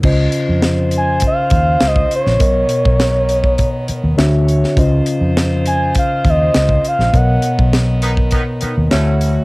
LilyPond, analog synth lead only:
\new Staff \with { instrumentName = "Analog synth lead" } { \time 4/4 \key des \major \tempo 4 = 102 r4. aes''8 f''4 ees''8 des''8~ | des''2.~ des''8 r8 | r4. aes''8 f''8 ees''4 f''8 | ges''4 r2. | }